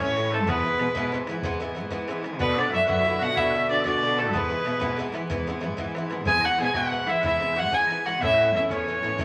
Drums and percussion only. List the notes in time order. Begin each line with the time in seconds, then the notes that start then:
0.17 bodhran
0.32 bodhran
0.48 bodhran
0.79 bodhran
0.95 bodhran
1.12 bodhran
1.27 bodhran
1.42 bodhran
1.59 bodhran
1.90 bodhran
2.08 bodhran
2.24 bodhran
2.40 bodhran
2.58 bodhran
2.74 bodhran
2.89 bodhran
3.06 bodhran
3.22 bodhran
3.37 bodhran
3.86 bodhran
4.03 bodhran
4.18 bodhran
4.33 bodhran
4.66 bodhran
4.82 bodhran
4.99 bodhran
5.14 bodhran
5.30 bodhran
5.63 bodhran
5.78 bodhran
5.95 bodhran
6.11 bodhran
6.25 bodhran
6.43 bodhran
6.59 bodhran
6.74 bodhran
6.92 bodhran
7.07 bodhran
7.24 bodhran
7.41 bodhran
7.72 bodhran
7.90 bodhran
8.07 bodhran
8.22 bodhran
8.39 bodhran
8.55 bodhran
8.70 bodhran
8.87 bodhran
9.03 bodhran
9.18 bodhran